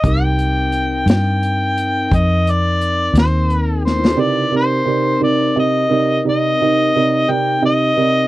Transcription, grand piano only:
X:1
M:12/8
L:1/8
Q:3/8=58
K:Cm
V:1 name="Grand piano"
[EGBd']12 | [C,EGBd] [C,EGBd] [C,EGBd] [C,EGBd] [C,EGBe] [C,EGBd] [C,EGBd] [C,EGBe] [C,EGBd] [C,EGBd] [C,EGBe] [C,EGBd] |]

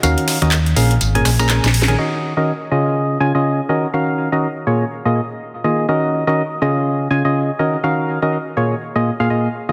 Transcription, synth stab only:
X:1
M:4/4
L:1/16
Q:"Swing 16ths" 1/4=123
K:Ebm
V:1 name="Synth stab"
[E,DGBf]3 [E,DGBe] z2 [B,,DABf] z2 [B,,DABa] z [B,,DABb] [B,,DABa] z2 [E,DABa] | [E,DGBe]3 [E,DGBe] z2 [D,DFAe]4 [D,DFAa] [D,DFAe]2 z [E,DGBe] z | [E,DGBf]3 [E,DGBe] z2 [B,,B,FAd] z2 [B,,B,FAe] z4 [E,B,FAe]2 | [E,DGBe]3 [E,DGBe] z2 [D,DFAe]4 [D,DFAa] [D,DFAe]2 z [E,DGBe] z |
[E,DGBf]3 [E,DGBe] z2 [B,,B,FAd] z2 [B,,B,FAe] z [B,,B,FAf] [B,,B,FAe] z2 [E,B,FAe] |]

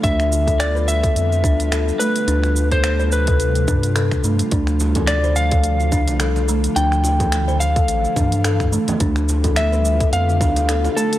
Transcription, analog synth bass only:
X:1
M:4/4
L:1/16
Q:"Swing 16ths" 1/4=107
K:Ddor
V:1 name="Analog synth bass" clef=bass
D,,6- D,, z F,,2 D,,3 z3 | D,,8- D,,2 G,,3 z G,, z | D,,8- D,,3 C,,4 z | D,,6- D,, z A,,, z G,,4 z2 |
D,,6- D,, z F,,2 D,,3 z3 |]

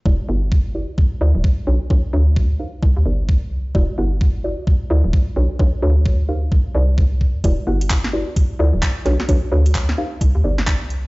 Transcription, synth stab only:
X:1
M:4/4
L:1/8
Q:"Swing 16ths" 1/4=130
K:Em
V:1 name="Synth stab"
[EFGBd] [EFGBf] z [EFGBd] z [E=FAcd] z [D^FAB^c] | [DFAB^c] [DFABc] z [_EG_B=c=f] z [EGBcd] z2 | [EFGBd] [EFGBf] z [EFGBd] z [E=FAcd] z [D^FAB^c] | [DFAB^c] [DFABc] z [_EG_B=c=f] z [EGBcd] z2 |
[EFGBd] [EFGBf] z [EFGBd] z [E=FAcd] z [D^FAB^c] | [DFAB^c] [DFABc] z [_EG_B=c=f] z [EGBcd] z2 |]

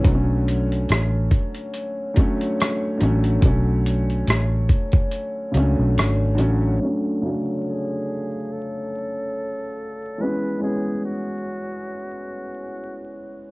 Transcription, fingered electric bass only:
X:1
M:4/4
L:1/16
Q:"Swing 16ths" 1/4=71
K:Bdor
V:1 name="Fingered electric bass" clef=bass
B,,,4 A,,,2 z8 A,,,2 | B,,,4 A,,,2 z4 C,, B,,, G,,,2 A,,,2 | z16 | z16 |]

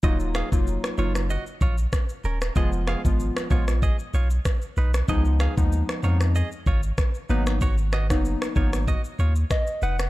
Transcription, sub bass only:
X:1
M:4/4
L:1/16
Q:"Swing 16ths" 1/4=95
K:Ebm
V:1 name="Sub bass" clef=bass
E,,,3 F,,,2 z G,,,3 z B,,,2 z2 E,,,2 | F,,,3 A,,,2 z B,,,3 z C,,2 z2 C,,2 | D,,3 E,,2 z F,,3 z A,,,2 z2 A,,,2- | A,,,3 G,,,2 z A,,,3 z E,,2 z2 F,,,2 |]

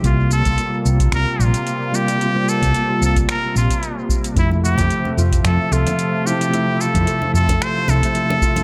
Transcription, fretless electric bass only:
X:1
M:4/4
L:1/16
Q:"Swing 16ths" 1/4=111
K:F
V:1 name="Fretless electric bass" clef=bass
C,,3 C,, z2 C,,2 C,, z B,,, z4 z | z3 C,, z2 C,,2 z2 B,,, z4 z | F,,3 F,, z2 F,,2 F,, z C,, z4 z | z3 F,, z2 F,,2 z2 C,, z4 z |]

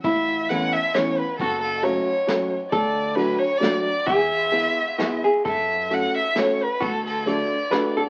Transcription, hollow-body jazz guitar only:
X:1
M:3/4
L:1/8
Q:"Swing" 1/4=133
K:A
V:1 name="Hollow-body jazz guitar"
E6 | F6 | A6 | G4 F G |
A6 | F4 B A |]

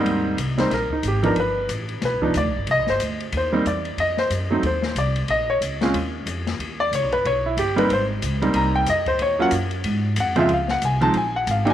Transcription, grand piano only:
X:1
M:4/4
L:1/8
Q:"Swing" 1/4=184
K:Ab
V:1 name="Grand piano"
z3 c B E G B | =B2 z2 B2 =d2 | e c z2 c2 =d2 | e c z2 c2 =d2 |
e d z6 | z =d _d _c d _F G c | c z3 b g e c | d _g z4 g _f |
[K:Db] f g a =a _a g f [=ga] |]
V:2 name="Grand piano"
[A,,G,B,CE]2 z [G,B,CE] z3 [F,_C=DE] | z4 z [F,=B,=DE] z2 | z4 z [G,B,CE] z2 | z3 [_G,=A,CE] z4 |
z3 [A,CDF] z4 | z6 z [G,B,CE] | z3 [G,B,CE]3 z2 | z [_G,B,DF] z4 z [D,,F,A,CF] |
[K:Db] z3 [F,A,CE] z3 [G,B,=DE] |]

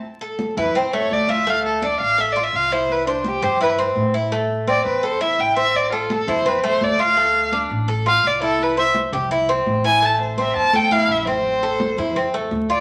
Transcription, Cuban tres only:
X:1
M:4/4
L:1/8
Q:1/4=168
K:Am
V:1 name="Cuban tres"
z A2 E C A,2 F | A,2 D2 A F2 E- | E c2 G E C2 E | A,2 C2 A E2 C- |
C A2 E C A,2 F | A,2 D2 A F2 E- | E c2 G E C2 E | A,2 C2 A E2 C- |
C A2 E C A,2 F |]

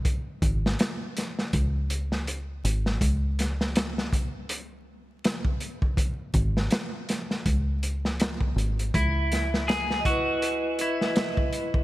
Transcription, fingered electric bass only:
X:1
M:4/4
L:1/8
Q:"Swing 16ths" 1/4=81
K:C#m
V:1 name="Fingered electric bass" clef=bass
z G,,, z2 C,,3 G,,, | C,,8- | C,, G,,, z2 C,,3 G,,, | C,,8 |]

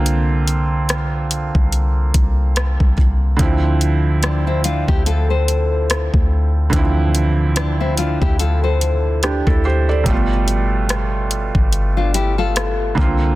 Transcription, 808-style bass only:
X:1
M:4/4
L:1/16
Q:"Swing 16ths" 1/4=72
K:Dm
V:1 name="808-style bass" clef=bass
C,,6- C,, C,,3 C,,3 C,, C,,2 | D,,6- D,, D,,6 D,,3 | D,,6- D,, D,,6 D,,3 | G,,,6- G,,, G,,,6- G,,, C,,2 |]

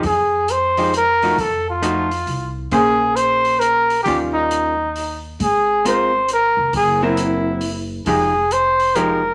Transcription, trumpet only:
X:1
M:3/4
L:1/8
Q:"Swing" 1/4=135
K:Fm
V:1 name="Trumpet"
A2 c2 B2 | =A F4 z | A2 c2 B2 | G E4 z |
A2 c2 B2 | A _F4 z | A2 c2 B2 |]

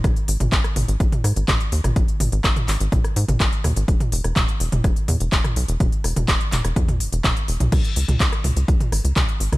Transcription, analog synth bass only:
X:1
M:4/4
L:1/16
Q:1/4=125
K:E
V:1 name="Analog synth bass" clef=bass
G,,, z G,,, G,,, G,,, z G,,, G,,, G,,, z G,, G,,, G,,, z D,, G,,, | G,,, z G,,, G,,, G,,, z G,,, G,,, G,,, z G,, G,,, G,,, z D,, G,,, | E,,, z E,,, E,,, E,,, z E,,, E,,, E,,, z E,, E,,, E,,, z B,,, E,,, | E,,, z E,,, E,,, E,,, z E,,, E,,, E,,2 E,,, E,,, E,,, z E,,, B,,, |
C,, z C,, C,, C,, z C,, C,, C,, z G,,, C,, C,, z G,,, C,, |]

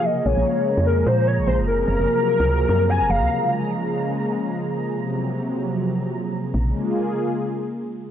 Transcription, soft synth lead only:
X:1
M:4/4
L:1/8
Q:"Swing 16ths" 1/4=148
K:Bbm
V:1 name="Soft synth lead"
e d3 B c d c | B6 a f- | f z6 z | z8 |
z8 |]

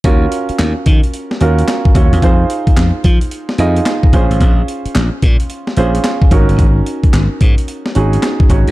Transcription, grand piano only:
X:1
M:4/4
L:1/8
Q:"Swing 16ths" 1/4=110
K:Ebdor
V:1 name="Grand piano"
[DFGB]3 z2 [DFGB] z [DFGd] | [EFAc]3 z2 [EFAe] z [DFAc]- | [DFAc]2 z3 [DFAc] z [DEGB]- | [DEGB]2 z3 [DEGA] z [DEGd] |]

